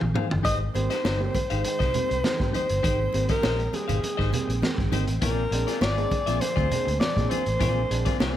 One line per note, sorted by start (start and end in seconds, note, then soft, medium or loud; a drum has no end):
0.00 0.13 A#1 medium
0.00 0.43 D#3 medium
0.00 0.44 A#3 medium
0.00 0.43 C4 medium
0.00 0.43 G#4 medium
0.00 high tom medium
0.14 0.27 D#4 medium
0.14 0.27 G#4 medium
0.14 0.27 C5 medium
0.14 0.28 F5 medium
0.14 mid tom medium
0.14 high conga medium
0.30 0.42 G1 medium
0.30 muted clean electric guitar stroke medium
0.30 floor tom medium
0.43 0.68 G#1 loud
0.43 0.62 G#2 medium
0.43 0.62 D#3 medium
0.43 5.19 D#3 medium
0.43 5.18 G#3 medium
0.43 8.37 C4 medium
0.43 0.59 D#4 medium
0.43 0.60 G4 medium
0.43 0.60 C5 medium
0.43 0.58 D#5 loud
0.43 0.60 D#5 medium
0.43 5.18 G5 medium
0.43 kick loud
0.43 closed hi-hat loud
0.74 0.87 G#1 loud
0.74 0.92 G3 medium
0.74 0.90 A#3 medium
0.74 0.89 C4 medium
0.74 1.31 C5 loud
0.74 muted clean electric guitar stroke soft
0.74 closed hi-hat medium
0.74 muted conga soft
0.90 0.97 A#3 soft
0.90 0.96 C4 soft
0.90 1.02 D#4 soft
0.90 1.01 G4 medium
0.90 1.01 C5 medium
0.90 1.01 D#5 medium
0.90 snare soft
0.90 closed hi-hat medium
1.04 1.28 G1 medium
1.04 1.20 D#4 medium
1.04 1.20 G4 medium
1.04 1.20 C5 medium
1.04 1.21 D#5 loud
1.04 snare loud
1.04 high conga medium
1.20 1.35 G3 medium
1.20 1.36 A#3 medium
1.20 1.36 C4 medium
1.34 2.50 C5 loud
1.34 muted clean electric guitar stroke soft
1.34 kick medium
1.34 closed hi-hat medium
1.34 muted conga medium
1.50 1.62 G#1 medium
1.50 1.64 G#2 medium
1.50 1.64 D#3 medium
1.50 1.62 D#4 medium
1.50 1.61 G4 medium
1.50 1.61 C5 medium
1.50 1.61 F5 medium
1.50 closed hi-hat medium
1.64 1.82 G#2 medium
1.64 1.82 D#3 medium
1.64 muted clean electric guitar stroke soft
1.64 muted fingered electric bass stroke soft
1.64 closed hi-hat medium
1.64 muted conga soft
1.79 1.91 C2 medium
1.79 1.92 D#4 medium
1.79 1.92 G4 medium
1.79 1.93 C5 medium
1.79 1.93 D#5 medium
1.79 kick medium
1.79 snare soft
1.79 closed hi-hat soft
1.94 2.11 G3 medium
1.94 2.09 A#3 medium
1.94 2.08 C4 medium
1.94 muted clean electric guitar stroke soft
1.94 closed hi-hat medium
1.94 low conga medium
2.09 2.21 C2 medium
2.09 2.16 A#3 soft
2.09 2.16 C4 soft
2.09 muted clean electric guitar stroke medium
2.09 closed hi-hat soft
2.23 2.41 G#2 medium
2.23 2.41 D#3 medium
2.23 muted clean electric guitar stroke soft
2.23 snare loud
2.23 high conga medium
2.40 2.51 G#2 medium
2.40 2.55 G3 medium
2.40 2.53 A#3 medium
2.40 2.53 C4 medium
2.40 kick medium
2.40 snare soft
2.53 2.61 A#3 soft
2.53 2.61 C4 soft
2.53 2.66 D#4 medium
2.53 2.66 G4 medium
2.53 2.66 C5 medium
2.53 3.26 C5 loud
2.53 2.67 D#5 medium
2.53 closed hi-hat medium
2.53 high conga medium
2.69 2.81 G1 medium
2.69 muted clean electric guitar stroke soft
2.69 closed hi-hat medium
2.83 3.07 G#1 loud
2.83 3.01 G#2 medium
2.83 3.01 D#3 medium
2.83 2.99 D#4 medium
2.83 2.99 G4 medium
2.83 2.99 C5 medium
2.83 2.99 D#5 medium
2.83 kick loud
2.83 closed hi-hat loud
3.01 3.06 A#3 soft
3.01 3.06 C4 soft
3.13 3.26 G#1 medium
3.13 3.30 G3 medium
3.13 3.31 A#3 medium
3.13 3.31 C4 medium
3.13 muted clean electric guitar stroke soft
3.13 closed hi-hat medium
3.13 muted conga soft
3.29 3.41 D#4 medium
3.29 3.41 G4 medium
3.29 3.77 A#4 loud
3.29 3.40 C5 medium
3.29 3.40 D#5 medium
3.29 kick loud
3.29 snare soft
3.29 closed hi-hat medium
3.42 3.67 A#1 loud
3.42 3.60 G#2 soft
3.42 3.60 D#3 medium
3.42 3.58 D#4 medium
3.42 3.59 G4 medium
3.42 3.59 C5 loud
3.42 3.59 D#5 medium
3.42 snare loud
3.42 high conga medium
3.59 closed hi-hat soft
3.73 3.90 G3 medium
3.73 3.87 A#3 medium
3.73 3.88 C4 medium
3.73 4.94 G#4 medium
3.73 muted clean electric guitar stroke soft
3.73 closed hi-hat medium
3.73 muted conga medium
3.88 4.00 G#1 medium
3.88 3.94 A#3 soft
3.88 3.95 C4 soft
3.88 4.00 D#4 soft
3.88 4.00 G4 medium
3.88 3.99 C5 medium
3.88 3.99 F5 medium
3.88 closed hi-hat medium
3.88 low conga medium
4.01 4.10 A#3 soft
4.01 4.10 C4 soft
4.01 muted clean electric guitar stroke soft
4.01 muted fingered electric bass stroke soft
4.01 closed hi-hat medium
4.01 muted conga medium
4.17 4.30 G#1 loud
4.17 4.34 G#2 medium
4.17 4.34 D#3 medium
4.17 4.30 D#4 medium
4.17 4.31 G4 medium
4.17 4.31 C5 medium
4.17 4.32 D#5 loud
4.17 kick medium
4.17 snare soft
4.31 4.50 G3 medium
4.31 4.50 A#3 medium
4.31 4.50 C4 medium
4.31 muted clean electric guitar stroke soft
4.31 closed hi-hat medium
4.31 low conga medium
4.48 4.59 A#1 medium
4.48 muted clean electric guitar stroke soft
4.48 closed hi-hat medium
4.62 4.79 A#3 medium
4.62 4.80 C4 medium
4.62 muted clean electric guitar stroke soft
4.62 snare loud
4.62 high conga medium
4.78 4.89 G#1 medium
4.78 4.94 G#2 medium
4.78 4.94 D#3 medium
4.78 kick medium
4.78 snare soft
4.92 5.04 G#1 loud
4.92 5.09 A#3 medium
4.92 5.10 C4 medium
4.92 5.04 D#4 medium
4.92 5.05 G4 medium
4.92 5.05 C5 medium
4.92 5.05 D#5 medium
4.92 closed hi-hat medium
4.92 high conga medium
5.07 5.19 A1 medium
5.07 muted clean electric guitar stroke medium
5.07 closed hi-hat medium
5.21 5.45 A#1 loud
5.21 5.40 A#2 medium
5.21 8.37 D3 medium
5.21 5.40 F3 medium
5.21 8.37 A#3 medium
5.21 5.42 C4 medium
5.21 5.42 F4 loud
5.21 8.37 G#4 medium
5.21 5.42 G#4 medium
5.21 5.83 A#4 loud
5.21 5.43 D5 loud
5.21 kick loud
5.21 closed hi-hat loud
5.51 5.64 A#1 loud
5.51 5.69 G#3 medium
5.51 5.67 C4 medium
5.51 5.67 D4 loud
5.51 muted clean electric guitar stroke soft
5.51 closed hi-hat medium
5.67 5.79 C4 medium
5.67 5.74 C4 soft
5.67 5.74 D4 soft
5.67 5.79 F4 medium
5.67 5.79 G#4 medium
5.67 5.78 D5 medium
5.67 snare soft
5.67 closed hi-hat medium
5.81 6.05 G#1 medium
5.81 6.01 C4 medium
5.81 6.02 F4 medium
5.81 6.02 G#4 medium
5.81 6.43 D5 loud
5.81 6.02 D5 medium
5.81 snare loud
5.81 high conga medium
5.97 6.13 G#3 medium
5.97 6.13 C4 medium
5.97 6.13 D4 medium
5.97 closed hi-hat soft
6.11 muted clean electric guitar stroke soft
6.11 kick medium
6.11 closed hi-hat medium
6.11 muted conga medium
6.26 6.38 A#1 medium
6.26 6.41 A#2 medium
6.26 6.41 F3 medium
6.26 6.38 C4 medium
6.26 6.39 F4 medium
6.26 6.38 G#4 medium
6.26 6.38 E5 medium
6.26 closed hi-hat medium
6.41 6.59 A#2 medium
6.41 6.59 F3 medium
6.41 6.99 C5 loud
6.41 muted fingered electric bass stroke medium
6.41 muted clean electric guitar stroke soft
6.41 closed hi-hat medium
6.41 muted conga medium
6.56 6.68 D2 loud
6.56 6.69 C4 medium
6.56 6.69 F4 medium
6.56 6.70 G#4 medium
6.56 6.70 D5 medium
6.56 kick medium
6.56 closed hi-hat soft
6.70 6.88 G#3 medium
6.70 6.87 C4 medium
6.70 6.86 D4 medium
6.70 muted clean electric guitar stroke soft
6.70 closed hi-hat medium
6.70 low conga medium
6.86 6.98 D2 loud
6.86 6.93 C4 soft
6.86 6.93 D4 soft
6.86 muted clean electric guitar stroke medium
6.86 closed hi-hat medium
7.00 7.19 A#2 medium
7.00 7.19 F3 medium
7.00 7.31 D5 loud
7.00 muted clean electric guitar stroke soft
7.00 snare loud
7.00 high conga medium
7.17 7.28 A#2 loud
7.17 7.32 G#3 medium
7.17 7.30 C4 medium
7.17 7.30 D4 medium
7.17 kick medium
7.17 snare soft
7.17 closed hi-hat soft
7.29 7.43 C4 medium
7.29 7.38 C4 soft
7.29 7.38 D4 soft
7.29 7.43 F4 medium
7.29 7.44 G#4 medium
7.29 8.37 C5 loud
7.29 7.44 D5 medium
7.29 closed hi-hat medium
7.29 high conga medium
7.46 7.58 A1 medium
7.46 muted clean electric guitar stroke soft
7.46 closed hi-hat medium
7.59 7.84 A#1 loud
7.59 7.78 A#2 medium
7.59 7.78 F3 medium
7.59 7.80 C4 medium
7.59 7.81 F4 loud
7.59 7.81 G#4 loud
7.59 7.81 D5 medium
7.59 kick loud
7.59 closed hi-hat loud
7.77 7.83 C4 soft
7.77 7.83 D4 soft
7.90 8.03 A#1 medium
7.90 8.07 G#3 medium
7.90 8.08 C4 medium
7.90 8.07 D4 medium
7.90 muted clean electric guitar stroke soft
7.90 closed hi-hat medium
8.05 8.18 C4 medium
8.05 8.17 F4 medium
8.05 8.17 G#4 medium
8.05 8.17 D5 medium
8.05 kick loud
8.05 snare soft
8.05 closed hi-hat medium
8.20 8.37 C2 loud
8.20 8.37 A#2 medium
8.20 8.37 F3 medium
8.20 8.37 C4 medium
8.20 8.37 F4 medium
8.20 8.37 G#4 loud
8.20 8.37 D5 loud
8.20 snare loud
8.20 high conga medium